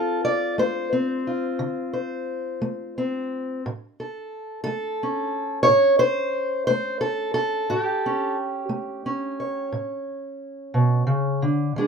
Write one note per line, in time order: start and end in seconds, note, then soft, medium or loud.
0.00 0.16 D3 medium
0.00 0.91 C4 medium
0.00 1.26 F4 soft
0.00 0.24 A4 medium
0.25 0.58 D5 medium
0.58 1.19 A3 medium
0.58 1.92 C5 medium
0.93 2.96 C4 soft
1.27 3.60 F4 soft
1.59 2.20 D3 medium
1.93 3.59 C5 soft
2.62 3.23 A3 medium
2.98 3.64 C4 medium
3.66 4.26 A2 medium
4.00 4.63 A4 soft
4.64 5.27 A3 medium
4.64 5.62 A4 medium
5.03 7.67 C#4 soft
5.63 5.98 C#5 loud
5.68 6.28 A2 medium
5.99 6.66 C5 loud
6.67 7.30 A3 medium
6.67 7.00 C5 loud
7.01 7.33 A4 medium
7.34 8.36 A4 medium
7.70 8.31 A2 medium
7.70 9.72 G4 medium
8.06 9.05 C#4 soft
8.69 9.31 A3 medium
9.06 11.71 C#4 soft
9.40 11.71 C#5 soft
9.72 10.33 A2 medium
10.74 11.06 B2 medium
11.07 11.40 C#3 medium
11.42 11.75 D3 medium
11.76 11.87 E3 medium
11.76 11.87 G#3 soft
11.76 11.87 D4 soft
11.76 11.87 G#4 soft